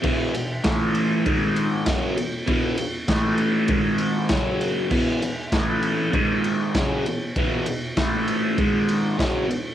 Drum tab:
CC |x-------|--------|x-------|--------|
RD |-xxxxxxx|xxxxxxxx|-xxxxxxx|xxxxxxxx|
SD |--o---o-|--o---o-|--o---o-|--o---o-|
BD |o-o-o-o-|o-o-o-o-|o-o-o-o-|o-o-o-o-|